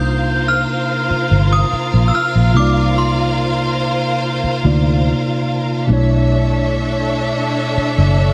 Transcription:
Already playing: C2 C3 A#3 D4 D#4 F4 A#4 C5 F5 G6
0.48 F6
1.10 muted fingered electric bass stroke
1.31 G1
1.53 D#6
1.73 muted fingered electric bass stroke
1.94 A#1
2.08 E6
2.15 F6
2.35 A#1
2.54 C2 C3 A#3 D#4 C5 D6
2.58 F4 D5
2.98 C6
4.44 muted fingered electric bass stroke
4.63 D2 C3 A#3 D#4 F4 D5
5.87 B1 B2 A3 D4 A4 C#5 E5
5.92 E4 C#5
7.77 muted fingered electric bass stroke
7.98 F#1

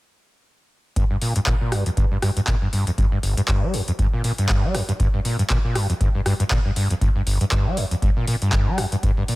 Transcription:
0.96 G2, kick, closed hi-hat
1.11 G2
1.22 A#2, open hi-hat
1.36 G2, closed hi-hat
1.47 A#2, kick, clap, closed hi-hat
1.61 A#2
1.72 G2, cross-stick, open hi-hat
1.86 F2, closed hi-hat
1.97 G2, kick, closed hi-hat
2.12 G2
2.22 G2, cross-stick, open hi-hat
2.37 G2, closed hi-hat
2.47 A#2, kick, clap, closed hi-hat
2.62 G2
2.73 G2, open hi-hat
2.87 F2, closed hi-hat
2.98 G2, kick, closed hi-hat
3.12 G2
3.23 G1, open hi-hat
3.37 G2, closed hi-hat
3.48 G2, kick, clap, closed hi-hat
3.63 G3
3.74 F2, open hi-hat
3.88 F2, closed hi-hat
3.99 G2, kick, closed hi-hat
4.13 A#2
4.24 A#2, open hi-hat
4.38 G2, closed hi-hat
4.49 G2, kick, clap, closed hi-hat
4.63 G3
4.74 F2, cross-stick, open hi-hat
4.89 G2, closed hi-hat
5.00 G2, kick, closed hi-hat
5.14 G2
5.25 A#2, open hi-hat
5.39 G2, closed hi-hat
5.50 A#2, kick, clap, closed hi-hat
5.64 A#2
5.75 G2, cross-stick, open hi-hat
5.89 F2, closed hi-hat
6.01 G2, kick, closed hi-hat
6.15 G2
6.26 G2, cross-stick, open hi-hat
6.40 G2, closed hi-hat
6.51 A#2, kick, clap, closed hi-hat
6.65 G2
6.76 G2, open hi-hat
6.90 F2, closed hi-hat
7.01 G2, kick, closed hi-hat
7.16 G2
7.27 G1, open hi-hat
7.41 G2, closed hi-hat
7.52 G2, kick, clap, closed hi-hat
7.66 G3
7.77 F2, open hi-hat
7.91 F2, closed hi-hat
8.02 G2, kick, closed hi-hat
8.16 A#2
8.27 A#2, open hi-hat
8.42 G2, closed hi-hat
8.53 G2, kick, clap, closed hi-hat
8.67 G3
8.78 F2, cross-stick, open hi-hat
8.92 G2, closed hi-hat
9.03 G2, kick, closed hi-hat
9.17 G2
9.28 A#2, open hi-hat

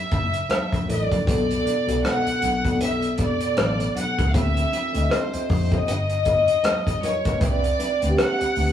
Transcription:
Already playing: E5
0.11 F#1, kick, closed hi-hat, low conga
0.34 closed hi-hat
0.49 cross-stick, closed hi-hat, high conga
0.73 A#1, kick, closed hi-hat
0.87 A1 F#3 E4 A4 A#4 D5, closed hi-hat, high conga
1.11 A#1, kick, closed hi-hat, high conga
1.25 B1 B2 B3 A4 D5, kick, closed hi-hat, muted conga
1.51 closed hi-hat
1.66 closed hi-hat, muted conga
1.87 C2 B2 B3 A4 D5, closed hi-hat
2.04 F#5, cross-stick, closed hi-hat, high conga
2.27 muted fingered electric bass stroke, closed hi-hat
2.42 B1, closed hi-hat, low conga
2.63 B2 B3 A4 D5, kick, closed hi-hat, low conga
2.81 E5, closed hi-hat, muted conga
3.02 closed hi-hat
3.18 D5, kick, closed hi-hat
3.40 closed hi-hat
3.57 A1, cross-stick, closed hi-hat, high conga
3.80 closed hi-hat
3.96 F#5, closed hi-hat, high conga
4.18 C#2, kick, cross-stick, closed hi-hat, high conga
4.29 D3 F5
4.33 D2 C4 F4 E5, kick, closed hi-hat, muted conga
4.57 closed hi-hat
4.72 closed hi-hat, muted conga
4.93 D2 D3 C4 F4 D#5, closed hi-hat
5.02 E5
5.10 C5, cross-stick, closed hi-hat, high conga
5.34 muted fingered electric bass stroke, closed hi-hat
5.49 F2, kick, open hi-hat
5.71 D3 C4 F4 D#5 E5, kick, closed hi-hat
5.87 G1, closed hi-hat, muted conga
6.09 closed hi-hat
6.25 kick, closed hi-hat
6.48 closed hi-hat
6.63 cross-stick, closed hi-hat, high conga
6.87 kick, closed hi-hat
7.02 G3 F4 A#4 B4 C#5 D#5, closed hi-hat, high conga
7.25 kick, cross-stick, closed hi-hat, high conga
7.40 C2 C4 B4 D5 E5, kick, closed hi-hat
7.64 closed hi-hat
7.79 closed hi-hat, muted conga
8.00 D2 C4 B4 D5 F#5, closed hi-hat
8.09 G4
8.17 F#5, cross-stick, closed hi-hat, high conga
8.41 muted fingered electric bass stroke, closed hi-hat
8.56 D2, open hi-hat, low conga

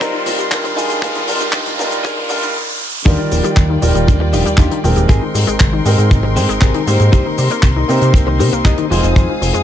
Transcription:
Already playing: C4 A#4 C6, riser
0.00 D3 G3 C4 D#4 F4 A#4 D5, kick, closed hi-hat, shaker
0.13 D#3, shaker
0.26 F3, muted clean electric guitar stroke, open hi-hat, high bongo, high conga, shaker
0.39 G3, closed hi-hat, shaker
0.51 D3 G3 D4 D#4 F4 A#4, kick, clap, closed hi-hat, high bongo, shaker
0.64 D#3, muted clean electric guitar stroke, closed hi-hat, shaker
0.76 F3 G#3 D#4 F4 G#4, open hi-hat, shaker
0.89 G3, closed hi-hat, high bongo, shaker
1.02 D3 G3 D4 D#4 F4 A#4, kick, closed hi-hat, high conga, shaker
1.15 D#3, closed hi-hat, high bongo, shaker
1.27 D3 G3 D4 D#4 F4 A#4, open hi-hat, shaker
1.40 D#3 D#4 F4 G4, closed hi-hat, shaker
1.52 D3 G3 D4 D#4 F4 A#4, kick, clap, closed hi-hat, high bongo, shaker
1.66 D#3, closed hi-hat, high conga, shaker
1.78 D3 G3 D4 D#4 F4 A#4, open hi-hat, high bongo, low conga, shaker
1.91 D#3, closed hi-hat, shaker
2.03 D3 G3 D4 D#4 F4 G#4 A#4, kick, closed hi-hat, shaker
2.17 D#3, high bongo, shaker
2.29 D3 G3 D4 D#4 F4 A#4, muted clean electric guitar stroke, open hi-hat, high conga, shaker
2.42 D#3, closed hi-hat, high bongo, shaker
3.05 D#2 D3 D#3 G3 D4 D#4 F4 G4 A#4 D5 G5, kick, closed hi-hat, shaker
3.19 D#3
3.31 D#1 F3, muted clean electric guitar stroke, open hi-hat, shaker
3.44 G3, muted clean electric guitar stroke, closed hi-hat, shaker
3.56 D#2 D3, muted clean electric guitar stroke, kick, clap, closed hi-hat, shaker
3.70 D#3
3.81 D#1 D#3 F3 G3 F4 A#4 D5, open hi-hat, shaker
3.95 D#1 G3, closed hi-hat, shaker
4.07 D#2 D3, muted clean electric guitar stroke, kick, closed hi-hat, shaker
4.20 D#3, muted clean electric guitar stroke
4.33 D#1 F3 D4 D#4 F4 G4, open hi-hat, shaker
4.46 D#2 G3, closed hi-hat, shaker
4.57 D#2 D3 D4 D#4 F4 G4, kick, clap, closed hi-hat, shaker
4.71 D#3, closed hi-hat
4.83 D#1 F3 G#3 C4 D#4 A#4 G5, open hi-hat, shaker
4.96 D#1 G3, muted clean electric guitar stroke, closed hi-hat, shaker
5.09 G#1 C3 C4 G4 G#4 A#4 G5 C6, kick, closed hi-hat, shaker
5.22 D#3
5.34 G#2 G3, muted clean electric guitar stroke, open hi-hat, shaker
5.47 G#1 G#3, muted clean electric guitar stroke, closed hi-hat, shaker
5.60 G#1 C3, muted clean electric guitar stroke, kick, clap, closed hi-hat, shaker
5.73 D#3
5.85 G#2 G3 G#3 C4 D#4 A#4 G5, open hi-hat, shaker
5.98 G#2 G#3, closed hi-hat, shaker
6.11 G#1 C3, muted clean electric guitar stroke, kick, closed hi-hat, shaker
6.23 D#3, muted clean electric guitar stroke
6.36 G#2 G3 C4 G4 G#4 C5, open hi-hat, shaker
6.49 G#1 G#3, closed hi-hat, shaker
6.61 G#1 C3 C4 G4 G#4 A#4, kick, clap, closed hi-hat, shaker
6.74 D#3, closed hi-hat
6.86 G#2 G3 A#3 C4 D#4 G4 C5, open hi-hat, shaker
7.00 G#2 G#3, muted clean electric guitar stroke, closed hi-hat, shaker
7.12 C2 C3 D#4 G4 A#4 C5, kick, closed hi-hat, shaker
7.26 D#3
7.38 C3 G3, muted clean electric guitar stroke, open hi-hat, shaker
7.50 A#3, muted clean electric guitar stroke, closed hi-hat, shaker
7.63 C2 C3, muted clean electric guitar stroke, kick, clap, closed hi-hat, shaker
7.76 D#3
7.88 C3 G3 A#3 C4 D#4 G4 C5, open hi-hat, shaker
8.01 C3 A#3, closed hi-hat, shaker
8.14 C2 C3, muted clean electric guitar stroke, kick, closed hi-hat, shaker
8.27 D#3, muted clean electric guitar stroke
8.39 C3 G3 D#4 G4 A#4 C5, open hi-hat, shaker
8.53 C2 A#3, closed hi-hat, shaker
8.65 C2 C3 D#4 G4 A#4 D#5, kick, clap, closed hi-hat, shaker
8.78 D#3, closed hi-hat
8.90 F1 F3 G#3 C4 D#4 F4 G#4 C5 F5 D#6, open hi-hat, shaker
9.04 F1 G#3, closed hi-hat, shaker
9.16 F2 C3, kick, closed hi-hat, shaker
9.29 D#3
9.41 F1 F3, muted clean electric guitar stroke, open hi-hat, shaker
9.54 F2 G#3, muted clean electric guitar stroke, closed hi-hat, shaker

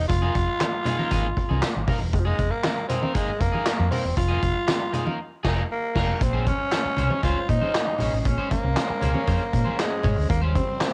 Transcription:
0.08 F1 F4, muted clean electric guitar stroke, kick, closed hi-hat, muted conga
0.22 A#3 D#4 G#4, muted conga
0.35 F1, muted clean electric guitar stroke, kick, closed hi-hat
0.47 muted clean electric guitar stroke
0.60 muted clean electric guitar stroke, snare, clap, closed hi-hat, muted conga, high conga
0.73 muted clean electric guitar stroke
0.85 A#3 D#4 G#4, closed hi-hat, low conga
0.98 A#3 D#4 A#4, high conga
1.10 G#1 A#3 D#4 G#4, kick, closed hi-hat, muted conga
1.25 muted conga
1.36 muted clean electric guitar stroke, kick, closed hi-hat
1.49 C2 A#3 D#4 G#4, high conga
1.62 muted clean electric guitar stroke, snare, clap, closed hi-hat, muted conga
1.76 G#1, muted conga
1.87 A#3 D#4 A#4, kick, open hi-hat, low conga
2.00 E1, muted clean electric guitar stroke
2.13 F1 G#3, muted clean electric guitar stroke, kick, closed hi-hat, muted conga
2.20 F3
2.25 G#3 A#3 D#4 G#4
2.38 F1, muted clean electric guitar stroke, kick, closed hi-hat
2.51 A#3, muted clean electric guitar stroke
2.64 muted clean electric guitar stroke, snare, clap, closed hi-hat, high conga
2.77 muted clean electric guitar stroke, muted conga
2.88 A#3 C4 D#4 G#4, closed hi-hat, low conga
3.02 A#3 D#4 A#4, high conga
3.14 G#3 A#3 D#4 G#4, kick, closed hi-hat
3.28 muted fingered electric bass stroke, muted conga
3.40 F1 A#3, muted clean electric guitar stroke, kick, closed hi-hat
3.52 A#3 D#4 G#4, high conga
3.65 muted clean electric guitar stroke, snare, clap, closed hi-hat, muted conga
3.80 F2, muted conga
3.91 A#3 C4 D#4 A#4, open hi-hat, low conga
4.04 E1, muted clean electric guitar stroke
4.16 F1 F4, muted clean electric guitar stroke, kick, closed hi-hat
4.29 A#3 D#4 G#4, muted conga
4.41 F1, muted clean electric guitar stroke, kick, closed hi-hat
4.55 muted clean electric guitar stroke
4.67 muted clean electric guitar stroke, snare, clap, closed hi-hat, muted conga, high conga
4.80 muted clean electric guitar stroke
4.92 A#3 D#4 G#4, closed hi-hat, low conga
5.05 A#3 D#4 A#4, high conga
5.43 F1 A#3 D#4 G#4, kick, snare, crash
5.72 A#3
5.95 F1 A#3 D#4 A#4, kick, snare, crash
6.20 A#1 G#3 C4 C#4 C5, muted clean electric guitar stroke, kick, closed hi-hat, muted conga
6.33 C#4 G#4 C5, muted conga
6.46 C#4, muted clean electric guitar stroke, kick, closed hi-hat, high conga
6.59 muted clean electric guitar stroke
6.72 muted clean electric guitar stroke, snare, clap, closed hi-hat, high conga
6.84 muted clean electric guitar stroke, muted fingered electric bass stroke
6.97 C2 C#4 G#4 C5, closed hi-hat, low conga
7.10 C#4 G#4 C#5, high conga
7.23 C#2 C#4 F4 G#4 C5, kick, closed hi-hat
7.36 muted conga
7.49 A#2 D#4, muted clean electric guitar stroke, kick, closed hi-hat
7.61 C#4 G#4 C5, high conga
7.74 muted clean electric guitar stroke, snare, clap, closed hi-hat
7.87 muted conga
7.99 A#1 C#4 G#4 C#5, open hi-hat, low conga
8.13 A1, muted clean electric guitar stroke
8.20 D#4, muted conga
8.25 A#1 C#4, muted clean electric guitar stroke, kick, closed hi-hat
8.38 C#4 G#4 C5, muted conga
8.51 A#3, muted clean electric guitar stroke, kick, closed hi-hat, high conga
8.64 C2, muted clean electric guitar stroke
8.76 muted clean electric guitar stroke, snare, clap, closed hi-hat, muted conga, high conga
8.89 muted clean electric guitar stroke, muted fingered electric bass stroke, muted conga
9.01 C#2 C#4 G#4 C5, closed hi-hat, low conga
9.14 C#4 G#4 C#5, high conga
9.26 F2 C#4 G#4 C5, kick, closed hi-hat
9.40 muted conga
9.52 A#2, muted clean electric guitar stroke, kick, closed hi-hat
9.65 C#4 G#4 C5, high conga
9.78 G#3, muted clean electric guitar stroke, snare, clap, closed hi-hat
10.03 G#2 C#4 G#4 C#5, kick, open hi-hat, low conga
10.16 D2, muted clean electric guitar stroke
10.29 D#2 C#3 F3 G3 A#3 C5, muted clean electric guitar stroke, kick, closed hi-hat
10.41 C#4 G4 C5
10.55 C4, muted clean electric guitar stroke, kick, closed hi-hat, high conga
10.67 muted clean electric guitar stroke
10.80 muted clean electric guitar stroke, snare, clap, closed hi-hat, high conga

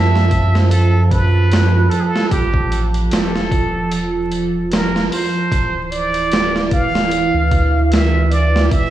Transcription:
Already playing: F#2 F3 E5 A5
0.16 snare
0.31 kick, closed hi-hat
0.55 snare
0.70 A4, closed hi-hat
1.10 B4, kick, closed hi-hat
1.52 snare, closed hi-hat
1.90 A4, closed hi-hat
2.00 G#4
2.06 A4
2.16 snare
2.31 A1 G4, kick, closed hi-hat
2.54 kick
2.72 closed hi-hat
2.94 closed hi-hat
3.10 E1 A4, snare, closed hi-hat
3.36 snare
3.52 kick, closed hi-hat
3.92 closed hi-hat
4.32 closed hi-hat
4.71 A#4, snare, closed hi-hat
4.96 snare
5.12 C5, open hi-hat
5.51 D1 E3, kick, closed hi-hat
5.91 D5, closed hi-hat
6.14 closed hi-hat
6.32 snare, closed hi-hat
6.56 snare
6.71 F5, kick, closed hi-hat
6.95 snare
7.11 closed hi-hat
7.34 D2
7.52 kick, closed hi-hat
7.91 E5, snare, closed hi-hat
8.30 D5, closed hi-hat
8.56 snare
8.71 F1 E5, kick, closed hi-hat

